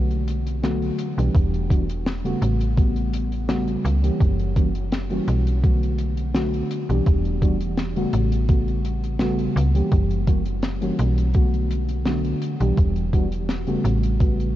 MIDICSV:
0, 0, Header, 1, 4, 480
1, 0, Start_track
1, 0, Tempo, 714286
1, 905, Time_signature, 4, 2, 24, 8
1, 9783, End_track
2, 0, Start_track
2, 0, Title_t, "FM electric piano"
2, 0, Program_c, 0, 5
2, 0, Note_on_c, 0, 50, 77
2, 0, Note_on_c, 0, 54, 70
2, 0, Note_on_c, 0, 57, 68
2, 0, Note_on_c, 0, 59, 70
2, 0, Note_on_c, 0, 66, 83
2, 394, Note_off_c, 0, 50, 0
2, 395, Note_off_c, 0, 54, 0
2, 396, Note_off_c, 0, 57, 0
2, 397, Note_off_c, 0, 59, 0
2, 398, Note_off_c, 0, 66, 0
2, 419, Note_on_c, 0, 50, 89
2, 423, Note_on_c, 0, 54, 85
2, 425, Note_on_c, 0, 57, 89
2, 427, Note_on_c, 0, 59, 82
2, 430, Note_on_c, 0, 66, 102
2, 758, Note_off_c, 0, 50, 0
2, 760, Note_off_c, 0, 54, 0
2, 761, Note_off_c, 0, 57, 0
2, 762, Note_off_c, 0, 59, 0
2, 764, Note_off_c, 0, 66, 0
2, 782, Note_on_c, 0, 52, 80
2, 785, Note_on_c, 0, 55, 71
2, 786, Note_on_c, 0, 59, 77
2, 791, Note_on_c, 0, 62, 75
2, 792, Note_on_c, 0, 67, 91
2, 1113, Note_off_c, 0, 52, 0
2, 1115, Note_off_c, 0, 55, 0
2, 1116, Note_off_c, 0, 59, 0
2, 1118, Note_off_c, 0, 62, 0
2, 1119, Note_off_c, 0, 67, 0
2, 1139, Note_on_c, 0, 52, 84
2, 1141, Note_on_c, 0, 55, 75
2, 1143, Note_on_c, 0, 59, 76
2, 1146, Note_on_c, 0, 62, 74
2, 1149, Note_on_c, 0, 66, 89
2, 1230, Note_off_c, 0, 52, 0
2, 1232, Note_off_c, 0, 55, 0
2, 1233, Note_off_c, 0, 59, 0
2, 1234, Note_off_c, 0, 62, 0
2, 1235, Note_off_c, 0, 66, 0
2, 1508, Note_on_c, 0, 49, 92
2, 1509, Note_on_c, 0, 55, 81
2, 1512, Note_on_c, 0, 57, 83
2, 1514, Note_on_c, 0, 59, 83
2, 1516, Note_on_c, 0, 66, 99
2, 1836, Note_off_c, 0, 49, 0
2, 1837, Note_off_c, 0, 55, 0
2, 1839, Note_off_c, 0, 57, 0
2, 1839, Note_off_c, 0, 59, 0
2, 1841, Note_off_c, 0, 66, 0
2, 1859, Note_on_c, 0, 49, 81
2, 1861, Note_on_c, 0, 55, 74
2, 1863, Note_on_c, 0, 57, 71
2, 1866, Note_on_c, 0, 59, 73
2, 1869, Note_on_c, 0, 66, 82
2, 2315, Note_off_c, 0, 49, 0
2, 2316, Note_off_c, 0, 55, 0
2, 2317, Note_off_c, 0, 57, 0
2, 2318, Note_off_c, 0, 59, 0
2, 2320, Note_off_c, 0, 66, 0
2, 2339, Note_on_c, 0, 49, 91
2, 2343, Note_on_c, 0, 55, 85
2, 2345, Note_on_c, 0, 57, 82
2, 2347, Note_on_c, 0, 59, 86
2, 2350, Note_on_c, 0, 66, 102
2, 2678, Note_off_c, 0, 49, 0
2, 2680, Note_off_c, 0, 55, 0
2, 2681, Note_off_c, 0, 57, 0
2, 2682, Note_off_c, 0, 59, 0
2, 2684, Note_off_c, 0, 66, 0
2, 2705, Note_on_c, 0, 52, 79
2, 2706, Note_on_c, 0, 55, 70
2, 2708, Note_on_c, 0, 58, 73
2, 2712, Note_on_c, 0, 61, 76
2, 2715, Note_on_c, 0, 67, 87
2, 3035, Note_off_c, 0, 52, 0
2, 3035, Note_off_c, 0, 55, 0
2, 3036, Note_off_c, 0, 58, 0
2, 3038, Note_off_c, 0, 61, 0
2, 3040, Note_off_c, 0, 67, 0
2, 3062, Note_on_c, 0, 52, 81
2, 3064, Note_on_c, 0, 55, 78
2, 3066, Note_on_c, 0, 58, 73
2, 3070, Note_on_c, 0, 61, 77
2, 3071, Note_on_c, 0, 66, 89
2, 3152, Note_off_c, 0, 52, 0
2, 3153, Note_off_c, 0, 55, 0
2, 3154, Note_off_c, 0, 58, 0
2, 3156, Note_off_c, 0, 61, 0
2, 3156, Note_off_c, 0, 66, 0
2, 3428, Note_on_c, 0, 52, 89
2, 3431, Note_on_c, 0, 55, 82
2, 3431, Note_on_c, 0, 58, 82
2, 3435, Note_on_c, 0, 61, 83
2, 3437, Note_on_c, 0, 66, 95
2, 3756, Note_off_c, 0, 52, 0
2, 3758, Note_off_c, 0, 55, 0
2, 3758, Note_off_c, 0, 58, 0
2, 3760, Note_off_c, 0, 61, 0
2, 3761, Note_off_c, 0, 66, 0
2, 3780, Note_on_c, 0, 50, 77
2, 3783, Note_on_c, 0, 54, 73
2, 3787, Note_on_c, 0, 57, 66
2, 3788, Note_on_c, 0, 59, 70
2, 3792, Note_on_c, 0, 66, 84
2, 4235, Note_off_c, 0, 50, 0
2, 4237, Note_off_c, 0, 54, 0
2, 4239, Note_off_c, 0, 57, 0
2, 4239, Note_off_c, 0, 59, 0
2, 4241, Note_off_c, 0, 66, 0
2, 4260, Note_on_c, 0, 50, 92
2, 4263, Note_on_c, 0, 54, 87
2, 4266, Note_on_c, 0, 57, 82
2, 4269, Note_on_c, 0, 59, 85
2, 4270, Note_on_c, 0, 66, 102
2, 4598, Note_off_c, 0, 50, 0
2, 4600, Note_off_c, 0, 54, 0
2, 4602, Note_off_c, 0, 57, 0
2, 4603, Note_off_c, 0, 59, 0
2, 4604, Note_off_c, 0, 66, 0
2, 4629, Note_on_c, 0, 52, 81
2, 4631, Note_on_c, 0, 55, 74
2, 4633, Note_on_c, 0, 59, 73
2, 4637, Note_on_c, 0, 62, 78
2, 4638, Note_on_c, 0, 67, 90
2, 4957, Note_off_c, 0, 52, 0
2, 4958, Note_off_c, 0, 55, 0
2, 4959, Note_off_c, 0, 59, 0
2, 4961, Note_off_c, 0, 62, 0
2, 4961, Note_off_c, 0, 67, 0
2, 4979, Note_on_c, 0, 52, 81
2, 4983, Note_on_c, 0, 55, 77
2, 4986, Note_on_c, 0, 59, 76
2, 4987, Note_on_c, 0, 62, 73
2, 4991, Note_on_c, 0, 66, 89
2, 5070, Note_off_c, 0, 52, 0
2, 5072, Note_off_c, 0, 55, 0
2, 5074, Note_off_c, 0, 59, 0
2, 5074, Note_off_c, 0, 62, 0
2, 5076, Note_off_c, 0, 66, 0
2, 5347, Note_on_c, 0, 49, 88
2, 5350, Note_on_c, 0, 55, 78
2, 5354, Note_on_c, 0, 57, 81
2, 5355, Note_on_c, 0, 59, 80
2, 5358, Note_on_c, 0, 66, 96
2, 5676, Note_off_c, 0, 49, 0
2, 5677, Note_off_c, 0, 55, 0
2, 5679, Note_off_c, 0, 57, 0
2, 5680, Note_off_c, 0, 59, 0
2, 5682, Note_off_c, 0, 66, 0
2, 5699, Note_on_c, 0, 49, 77
2, 5702, Note_on_c, 0, 55, 72
2, 5705, Note_on_c, 0, 57, 69
2, 5707, Note_on_c, 0, 59, 72
2, 5709, Note_on_c, 0, 66, 84
2, 6155, Note_off_c, 0, 49, 0
2, 6156, Note_off_c, 0, 55, 0
2, 6158, Note_off_c, 0, 57, 0
2, 6159, Note_off_c, 0, 59, 0
2, 6160, Note_off_c, 0, 66, 0
2, 6181, Note_on_c, 0, 49, 89
2, 6182, Note_on_c, 0, 55, 86
2, 6186, Note_on_c, 0, 57, 86
2, 6188, Note_on_c, 0, 59, 90
2, 6191, Note_on_c, 0, 66, 100
2, 6519, Note_off_c, 0, 49, 0
2, 6520, Note_off_c, 0, 55, 0
2, 6522, Note_off_c, 0, 57, 0
2, 6522, Note_off_c, 0, 59, 0
2, 6524, Note_off_c, 0, 66, 0
2, 6547, Note_on_c, 0, 52, 83
2, 6551, Note_on_c, 0, 55, 77
2, 6552, Note_on_c, 0, 58, 75
2, 6555, Note_on_c, 0, 61, 74
2, 6557, Note_on_c, 0, 67, 90
2, 6876, Note_off_c, 0, 52, 0
2, 6878, Note_off_c, 0, 55, 0
2, 6878, Note_off_c, 0, 58, 0
2, 6880, Note_off_c, 0, 61, 0
2, 6881, Note_off_c, 0, 67, 0
2, 6903, Note_on_c, 0, 52, 84
2, 6904, Note_on_c, 0, 55, 77
2, 6907, Note_on_c, 0, 58, 75
2, 6910, Note_on_c, 0, 61, 78
2, 6912, Note_on_c, 0, 66, 97
2, 6992, Note_off_c, 0, 52, 0
2, 6993, Note_off_c, 0, 55, 0
2, 6994, Note_off_c, 0, 58, 0
2, 6996, Note_off_c, 0, 61, 0
2, 6997, Note_off_c, 0, 66, 0
2, 7266, Note_on_c, 0, 52, 94
2, 7269, Note_on_c, 0, 55, 85
2, 7270, Note_on_c, 0, 58, 79
2, 7273, Note_on_c, 0, 61, 84
2, 7277, Note_on_c, 0, 66, 97
2, 7595, Note_off_c, 0, 52, 0
2, 7597, Note_off_c, 0, 55, 0
2, 7597, Note_off_c, 0, 58, 0
2, 7599, Note_off_c, 0, 61, 0
2, 7601, Note_off_c, 0, 66, 0
2, 7620, Note_on_c, 0, 50, 75
2, 7623, Note_on_c, 0, 54, 69
2, 7626, Note_on_c, 0, 57, 72
2, 7627, Note_on_c, 0, 59, 68
2, 7630, Note_on_c, 0, 66, 89
2, 8076, Note_off_c, 0, 50, 0
2, 8077, Note_off_c, 0, 54, 0
2, 8078, Note_off_c, 0, 57, 0
2, 8079, Note_off_c, 0, 59, 0
2, 8080, Note_off_c, 0, 66, 0
2, 8099, Note_on_c, 0, 50, 99
2, 8100, Note_on_c, 0, 54, 91
2, 8102, Note_on_c, 0, 57, 84
2, 8107, Note_on_c, 0, 59, 90
2, 8110, Note_on_c, 0, 66, 99
2, 8438, Note_off_c, 0, 50, 0
2, 8438, Note_off_c, 0, 54, 0
2, 8440, Note_off_c, 0, 57, 0
2, 8442, Note_off_c, 0, 59, 0
2, 8443, Note_off_c, 0, 66, 0
2, 8467, Note_on_c, 0, 52, 86
2, 8470, Note_on_c, 0, 55, 78
2, 8473, Note_on_c, 0, 59, 77
2, 8474, Note_on_c, 0, 62, 73
2, 8477, Note_on_c, 0, 67, 88
2, 8796, Note_off_c, 0, 52, 0
2, 8797, Note_off_c, 0, 55, 0
2, 8799, Note_off_c, 0, 59, 0
2, 8800, Note_off_c, 0, 62, 0
2, 8801, Note_off_c, 0, 67, 0
2, 8822, Note_on_c, 0, 52, 88
2, 8825, Note_on_c, 0, 55, 81
2, 8828, Note_on_c, 0, 59, 80
2, 8830, Note_on_c, 0, 62, 80
2, 8832, Note_on_c, 0, 66, 95
2, 8912, Note_off_c, 0, 52, 0
2, 8913, Note_off_c, 0, 55, 0
2, 8915, Note_off_c, 0, 59, 0
2, 8916, Note_off_c, 0, 62, 0
2, 8917, Note_off_c, 0, 66, 0
2, 9187, Note_on_c, 0, 49, 94
2, 9188, Note_on_c, 0, 55, 86
2, 9191, Note_on_c, 0, 57, 85
2, 9194, Note_on_c, 0, 59, 84
2, 9196, Note_on_c, 0, 66, 99
2, 9516, Note_off_c, 0, 49, 0
2, 9517, Note_off_c, 0, 55, 0
2, 9518, Note_off_c, 0, 57, 0
2, 9519, Note_off_c, 0, 59, 0
2, 9521, Note_off_c, 0, 66, 0
2, 9540, Note_on_c, 0, 49, 81
2, 9544, Note_on_c, 0, 55, 75
2, 9546, Note_on_c, 0, 57, 75
2, 9547, Note_on_c, 0, 59, 76
2, 9551, Note_on_c, 0, 66, 85
2, 9783, Note_off_c, 0, 49, 0
2, 9783, Note_off_c, 0, 55, 0
2, 9783, Note_off_c, 0, 57, 0
2, 9783, Note_off_c, 0, 59, 0
2, 9783, Note_off_c, 0, 66, 0
2, 9783, End_track
3, 0, Start_track
3, 0, Title_t, "FM bass"
3, 0, Program_c, 1, 39
3, 0, Note_on_c, 1, 35, 93
3, 610, Note_off_c, 1, 35, 0
3, 792, Note_on_c, 1, 35, 87
3, 872, Note_off_c, 1, 35, 0
3, 904, Note_on_c, 1, 28, 100
3, 1571, Note_off_c, 1, 28, 0
3, 1624, Note_on_c, 1, 33, 97
3, 2531, Note_off_c, 1, 33, 0
3, 2585, Note_on_c, 1, 37, 98
3, 2758, Note_off_c, 1, 37, 0
3, 2826, Note_on_c, 1, 30, 94
3, 3492, Note_off_c, 1, 30, 0
3, 3546, Note_on_c, 1, 35, 94
3, 4452, Note_off_c, 1, 35, 0
3, 4632, Note_on_c, 1, 35, 86
3, 4712, Note_off_c, 1, 35, 0
3, 4746, Note_on_c, 1, 28, 97
3, 5412, Note_off_c, 1, 28, 0
3, 5465, Note_on_c, 1, 33, 96
3, 6372, Note_off_c, 1, 33, 0
3, 6424, Note_on_c, 1, 37, 104
3, 6598, Note_off_c, 1, 37, 0
3, 6665, Note_on_c, 1, 30, 96
3, 7332, Note_off_c, 1, 30, 0
3, 7385, Note_on_c, 1, 35, 96
3, 8292, Note_off_c, 1, 35, 0
3, 8470, Note_on_c, 1, 35, 87
3, 8551, Note_off_c, 1, 35, 0
3, 8584, Note_on_c, 1, 28, 94
3, 9251, Note_off_c, 1, 28, 0
3, 9304, Note_on_c, 1, 33, 97
3, 9783, Note_off_c, 1, 33, 0
3, 9783, End_track
4, 0, Start_track
4, 0, Title_t, "Drums"
4, 72, Note_on_c, 9, 42, 47
4, 139, Note_off_c, 9, 42, 0
4, 187, Note_on_c, 9, 42, 96
4, 254, Note_off_c, 9, 42, 0
4, 314, Note_on_c, 9, 42, 58
4, 381, Note_off_c, 9, 42, 0
4, 427, Note_on_c, 9, 42, 62
4, 428, Note_on_c, 9, 38, 109
4, 494, Note_off_c, 9, 42, 0
4, 495, Note_off_c, 9, 38, 0
4, 553, Note_on_c, 9, 42, 41
4, 620, Note_off_c, 9, 42, 0
4, 663, Note_on_c, 9, 42, 96
4, 730, Note_off_c, 9, 42, 0
4, 798, Note_on_c, 9, 42, 66
4, 865, Note_off_c, 9, 42, 0
4, 905, Note_on_c, 9, 36, 121
4, 913, Note_on_c, 9, 42, 61
4, 972, Note_off_c, 9, 36, 0
4, 980, Note_off_c, 9, 42, 0
4, 1034, Note_on_c, 9, 42, 43
4, 1102, Note_off_c, 9, 42, 0
4, 1145, Note_on_c, 9, 36, 107
4, 1151, Note_on_c, 9, 42, 91
4, 1212, Note_off_c, 9, 36, 0
4, 1218, Note_off_c, 9, 42, 0
4, 1274, Note_on_c, 9, 42, 70
4, 1341, Note_off_c, 9, 42, 0
4, 1388, Note_on_c, 9, 38, 115
4, 1388, Note_on_c, 9, 42, 62
4, 1455, Note_off_c, 9, 38, 0
4, 1455, Note_off_c, 9, 42, 0
4, 1515, Note_on_c, 9, 42, 47
4, 1583, Note_off_c, 9, 42, 0
4, 1627, Note_on_c, 9, 42, 98
4, 1694, Note_off_c, 9, 42, 0
4, 1751, Note_on_c, 9, 42, 68
4, 1818, Note_off_c, 9, 42, 0
4, 1865, Note_on_c, 9, 36, 115
4, 1869, Note_on_c, 9, 42, 64
4, 1932, Note_off_c, 9, 36, 0
4, 1936, Note_off_c, 9, 42, 0
4, 1990, Note_on_c, 9, 42, 46
4, 2057, Note_off_c, 9, 42, 0
4, 2107, Note_on_c, 9, 42, 91
4, 2174, Note_off_c, 9, 42, 0
4, 2232, Note_on_c, 9, 42, 63
4, 2299, Note_off_c, 9, 42, 0
4, 2345, Note_on_c, 9, 38, 121
4, 2348, Note_on_c, 9, 42, 62
4, 2412, Note_off_c, 9, 38, 0
4, 2416, Note_off_c, 9, 42, 0
4, 2471, Note_on_c, 9, 42, 43
4, 2539, Note_off_c, 9, 42, 0
4, 2591, Note_on_c, 9, 42, 101
4, 2658, Note_off_c, 9, 42, 0
4, 2714, Note_on_c, 9, 42, 62
4, 2781, Note_off_c, 9, 42, 0
4, 2825, Note_on_c, 9, 36, 122
4, 2831, Note_on_c, 9, 42, 59
4, 2893, Note_off_c, 9, 36, 0
4, 2898, Note_off_c, 9, 42, 0
4, 2953, Note_on_c, 9, 42, 44
4, 3021, Note_off_c, 9, 42, 0
4, 3066, Note_on_c, 9, 36, 106
4, 3068, Note_on_c, 9, 42, 101
4, 3133, Note_off_c, 9, 36, 0
4, 3136, Note_off_c, 9, 42, 0
4, 3192, Note_on_c, 9, 42, 67
4, 3259, Note_off_c, 9, 42, 0
4, 3306, Note_on_c, 9, 42, 69
4, 3309, Note_on_c, 9, 38, 117
4, 3373, Note_off_c, 9, 42, 0
4, 3377, Note_off_c, 9, 38, 0
4, 3429, Note_on_c, 9, 42, 42
4, 3496, Note_off_c, 9, 42, 0
4, 3546, Note_on_c, 9, 42, 93
4, 3613, Note_off_c, 9, 42, 0
4, 3674, Note_on_c, 9, 42, 68
4, 3742, Note_off_c, 9, 42, 0
4, 3786, Note_on_c, 9, 36, 113
4, 3786, Note_on_c, 9, 42, 66
4, 3853, Note_off_c, 9, 36, 0
4, 3853, Note_off_c, 9, 42, 0
4, 3917, Note_on_c, 9, 42, 42
4, 3984, Note_off_c, 9, 42, 0
4, 4020, Note_on_c, 9, 42, 83
4, 4087, Note_off_c, 9, 42, 0
4, 4147, Note_on_c, 9, 42, 60
4, 4215, Note_off_c, 9, 42, 0
4, 4264, Note_on_c, 9, 38, 121
4, 4268, Note_on_c, 9, 42, 61
4, 4331, Note_off_c, 9, 38, 0
4, 4335, Note_off_c, 9, 42, 0
4, 4393, Note_on_c, 9, 42, 45
4, 4460, Note_off_c, 9, 42, 0
4, 4507, Note_on_c, 9, 42, 96
4, 4575, Note_off_c, 9, 42, 0
4, 4635, Note_on_c, 9, 42, 63
4, 4702, Note_off_c, 9, 42, 0
4, 4746, Note_on_c, 9, 36, 115
4, 4747, Note_on_c, 9, 42, 69
4, 4813, Note_off_c, 9, 36, 0
4, 4814, Note_off_c, 9, 42, 0
4, 4872, Note_on_c, 9, 42, 37
4, 4939, Note_off_c, 9, 42, 0
4, 4986, Note_on_c, 9, 36, 103
4, 4987, Note_on_c, 9, 42, 85
4, 5053, Note_off_c, 9, 36, 0
4, 5054, Note_off_c, 9, 42, 0
4, 5111, Note_on_c, 9, 42, 62
4, 5178, Note_off_c, 9, 42, 0
4, 5225, Note_on_c, 9, 38, 106
4, 5225, Note_on_c, 9, 42, 59
4, 5292, Note_off_c, 9, 42, 0
4, 5293, Note_off_c, 9, 38, 0
4, 5352, Note_on_c, 9, 42, 39
4, 5419, Note_off_c, 9, 42, 0
4, 5464, Note_on_c, 9, 42, 97
4, 5531, Note_off_c, 9, 42, 0
4, 5591, Note_on_c, 9, 42, 63
4, 5659, Note_off_c, 9, 42, 0
4, 5703, Note_on_c, 9, 42, 65
4, 5705, Note_on_c, 9, 36, 112
4, 5770, Note_off_c, 9, 42, 0
4, 5772, Note_off_c, 9, 36, 0
4, 5832, Note_on_c, 9, 42, 39
4, 5899, Note_off_c, 9, 42, 0
4, 5946, Note_on_c, 9, 42, 85
4, 6013, Note_off_c, 9, 42, 0
4, 6073, Note_on_c, 9, 42, 58
4, 6140, Note_off_c, 9, 42, 0
4, 6179, Note_on_c, 9, 38, 118
4, 6185, Note_on_c, 9, 42, 56
4, 6246, Note_off_c, 9, 38, 0
4, 6252, Note_off_c, 9, 42, 0
4, 6309, Note_on_c, 9, 42, 46
4, 6376, Note_off_c, 9, 42, 0
4, 6433, Note_on_c, 9, 42, 98
4, 6500, Note_off_c, 9, 42, 0
4, 6552, Note_on_c, 9, 42, 61
4, 6620, Note_off_c, 9, 42, 0
4, 6664, Note_on_c, 9, 42, 66
4, 6665, Note_on_c, 9, 36, 116
4, 6731, Note_off_c, 9, 42, 0
4, 6732, Note_off_c, 9, 36, 0
4, 6791, Note_on_c, 9, 42, 43
4, 6859, Note_off_c, 9, 42, 0
4, 6904, Note_on_c, 9, 42, 100
4, 6905, Note_on_c, 9, 36, 101
4, 6971, Note_off_c, 9, 42, 0
4, 6972, Note_off_c, 9, 36, 0
4, 7027, Note_on_c, 9, 42, 55
4, 7094, Note_off_c, 9, 42, 0
4, 7141, Note_on_c, 9, 42, 60
4, 7143, Note_on_c, 9, 38, 116
4, 7208, Note_off_c, 9, 42, 0
4, 7211, Note_off_c, 9, 38, 0
4, 7270, Note_on_c, 9, 42, 41
4, 7337, Note_off_c, 9, 42, 0
4, 7384, Note_on_c, 9, 42, 87
4, 7451, Note_off_c, 9, 42, 0
4, 7512, Note_on_c, 9, 42, 61
4, 7579, Note_off_c, 9, 42, 0
4, 7618, Note_on_c, 9, 42, 62
4, 7625, Note_on_c, 9, 36, 109
4, 7686, Note_off_c, 9, 42, 0
4, 7692, Note_off_c, 9, 36, 0
4, 7753, Note_on_c, 9, 42, 44
4, 7820, Note_off_c, 9, 42, 0
4, 7867, Note_on_c, 9, 42, 89
4, 7934, Note_off_c, 9, 42, 0
4, 7987, Note_on_c, 9, 42, 53
4, 8055, Note_off_c, 9, 42, 0
4, 8101, Note_on_c, 9, 38, 103
4, 8102, Note_on_c, 9, 42, 56
4, 8169, Note_off_c, 9, 38, 0
4, 8169, Note_off_c, 9, 42, 0
4, 8229, Note_on_c, 9, 42, 44
4, 8296, Note_off_c, 9, 42, 0
4, 8344, Note_on_c, 9, 42, 86
4, 8412, Note_off_c, 9, 42, 0
4, 8471, Note_on_c, 9, 42, 65
4, 8538, Note_off_c, 9, 42, 0
4, 8584, Note_on_c, 9, 36, 109
4, 8586, Note_on_c, 9, 42, 63
4, 8652, Note_off_c, 9, 36, 0
4, 8654, Note_off_c, 9, 42, 0
4, 8709, Note_on_c, 9, 42, 45
4, 8776, Note_off_c, 9, 42, 0
4, 8825, Note_on_c, 9, 36, 104
4, 8825, Note_on_c, 9, 42, 90
4, 8892, Note_off_c, 9, 36, 0
4, 8892, Note_off_c, 9, 42, 0
4, 8951, Note_on_c, 9, 42, 60
4, 9019, Note_off_c, 9, 42, 0
4, 9065, Note_on_c, 9, 38, 98
4, 9066, Note_on_c, 9, 42, 61
4, 9133, Note_off_c, 9, 38, 0
4, 9133, Note_off_c, 9, 42, 0
4, 9187, Note_on_c, 9, 42, 39
4, 9254, Note_off_c, 9, 42, 0
4, 9308, Note_on_c, 9, 42, 97
4, 9375, Note_off_c, 9, 42, 0
4, 9431, Note_on_c, 9, 42, 59
4, 9499, Note_off_c, 9, 42, 0
4, 9545, Note_on_c, 9, 36, 107
4, 9547, Note_on_c, 9, 42, 60
4, 9612, Note_off_c, 9, 36, 0
4, 9614, Note_off_c, 9, 42, 0
4, 9676, Note_on_c, 9, 42, 41
4, 9744, Note_off_c, 9, 42, 0
4, 9783, End_track
0, 0, End_of_file